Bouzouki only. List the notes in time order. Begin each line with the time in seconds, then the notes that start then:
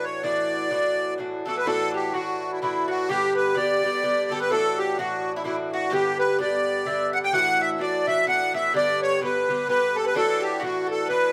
Already playing: A2 E3 D4 F#4
0.23 A2 E3 D4 F#4
0.70 A2 E3 D4 F#4
1.18 A2 E3 D4 F#4
1.46 A2 E3 D4 F#4
1.66 A2 E3 D4 F#4
2.13 A2 E3 D4 F#4
2.62 A2 E3 D4 F#4
3.09 G2 D3 B3 G4
3.55 G2 D3 B3 G4
3.82 G2 D3 B3 G4
4.02 G2 D3 B3 G4
4.29 G2 D3 B3 G4
4.50 A2 E3 D4 F#4
4.98 A2 E3 D4 F#4
5.44 A2 E3 D4 F#4
5.91 G2 D3 B3 G4
6.39 G2 D3 B3 G4
6.85 G2 D3 B3 G4
7.33 A2 E3 D4 F#4
7.78 A2 E3 D4 F#4
8.07 A2 E3 D4 F#4
8.26 A2 E3 D4 F#4
8.53 A2 E3 D4 F#4
8.73 G2 D3 B3 G4
9.21 G2 D3 B3 G4
9.48 G2 D3 B3 G4
9.68 G2 D3 B3 G4
10.15 A2 E3 D4 F#4
10.62 A2 E3 D4 F#4
11.09 A2 E3 D4 F#4